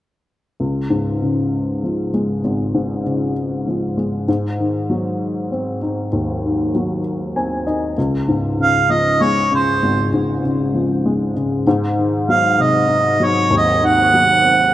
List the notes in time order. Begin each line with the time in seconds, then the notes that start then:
0.60 C#2
0.90 G#2
1.22 C#3
1.83 F3
2.14 G#3
2.44 G#1
2.74 G#2
3.06 C#3
3.67 F3
3.97 G#3
4.28 G#2
4.59 D#3
4.90 F#3
5.51 C4
5.82 D#4
6.13 D#2
6.44 D#3
6.75 F#3
7.36 C4 G#5
7.67 D#4 D#5
7.98 C#2
8.28 G#2
8.59 C#3 F5
8.89 F3 D#5
9.21 G#3 C#5
9.52 C#3 C5
9.82 G#1
10.14 G#2
10.44 C#3
10.74 F3
11.06 G#3
11.36 C#3
11.67 G#2
11.97 D#3
12.29 F#3 F5
12.58 C3 D#5
12.88 D#4
13.20 F#3
13.25 C#5
13.50 D#2
13.57 D#5
13.82 D#3 F#5
14.13 F#3
14.44 C4